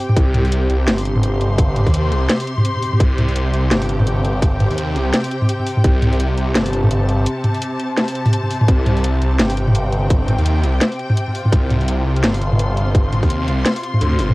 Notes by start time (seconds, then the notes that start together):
Already playing: C3 C4 G4 G5
0.09 mid tom
0.16 C2, kick, closed hi-hat
0.34 closed hi-hat, mid tom
0.45 open hi-hat
0.52 closed hi-hat
0.70 C2, closed hi-hat
0.87 G1, snare, closed hi-hat
0.95 C6, open hi-hat
1.05 closed hi-hat
1.16 mid tom
1.23 closed hi-hat
1.41 closed hi-hat
1.58 kick, closed hi-hat
1.76 closed hi-hat, mid tom
1.87 D#2, kick, open hi-hat
1.94 closed hi-hat
2.12 C2, closed hi-hat
2.30 snare, closed hi-hat
2.40 open hi-hat
2.47 closed hi-hat
2.58 mid tom
2.65 closed hi-hat
2.76 mid tom
2.79 mid tom, open hi-hat
2.88 mid tom
2.93 mid tom
3.00 C2, kick, closed hi-hat
3.18 closed hi-hat, mid tom
3.29 open hi-hat
3.36 closed hi-hat
3.54 C2, closed hi-hat
3.71 G1, snare, closed hi-hat
3.79 G5, open hi-hat
3.89 closed hi-hat
4.00 mid tom
4.07 closed hi-hat
4.25 closed hi-hat
4.42 kick, closed hi-hat
4.60 closed hi-hat, mid tom
4.71 D#2, open hi-hat
4.78 closed hi-hat
4.96 C2, closed hi-hat
5.13 snare, closed hi-hat
5.24 open hi-hat
5.31 closed hi-hat
5.42 mid tom
5.49 closed hi-hat
5.59 mid tom
5.67 open hi-hat
5.77 mid tom
5.84 C2, kick, closed hi-hat
6.02 closed hi-hat, mid tom
6.13 open hi-hat
6.20 closed hi-hat
6.38 C2, closed hi-hat
6.55 G1, snare, closed hi-hat
6.63 A5, open hi-hat
6.73 closed hi-hat
6.84 mid tom
6.91 closed hi-hat
7.09 closed hi-hat
7.26 closed hi-hat
7.44 closed hi-hat, mid tom
7.55 open hi-hat
7.62 closed hi-hat
7.80 closed hi-hat
7.97 snare, closed hi-hat
8.08 open hi-hat
8.15 closed hi-hat
8.26 mid tom, open hi-hat
8.33 closed hi-hat
8.43 mid tom
8.51 open hi-hat
8.61 mid tom
8.68 C2, kick, closed hi-hat
8.86 closed hi-hat, mid tom
8.97 open hi-hat
9.04 closed hi-hat
9.22 C2, closed hi-hat
9.39 G1, snare, closed hi-hat
9.47 G5, open hi-hat
9.57 closed hi-hat
9.68 mid tom
9.75 closed hi-hat
9.93 closed hi-hat
10.10 kick, closed hi-hat
10.28 closed hi-hat, mid tom
10.39 D#2, open hi-hat
10.46 closed hi-hat
10.64 C2, closed hi-hat
10.81 snare, closed hi-hat
10.92 open hi-hat
10.99 closed hi-hat
11.10 mid tom
11.17 closed hi-hat
11.28 F4, mid tom
11.35 open hi-hat
11.45 mid tom
11.52 C2, kick, closed hi-hat
11.70 closed hi-hat, mid tom
11.81 open hi-hat
11.88 closed hi-hat
12.06 C2
12.16 closed hi-hat
12.23 G1, snare, closed hi-hat
12.31 C6, open hi-hat
12.41 closed hi-hat
12.52 mid tom
12.59 closed hi-hat
12.77 closed hi-hat
12.94 kick, closed hi-hat
13.12 closed hi-hat, mid tom
13.23 D#2, kick, open hi-hat
13.30 closed hi-hat
13.48 C2, closed hi-hat
13.65 snare, closed hi-hat
13.76 open hi-hat
13.83 closed hi-hat
13.94 mid tom
14.01 D2, closed hi-hat
14.12 mid tom
14.19 G1, open hi-hat
14.29 mid tom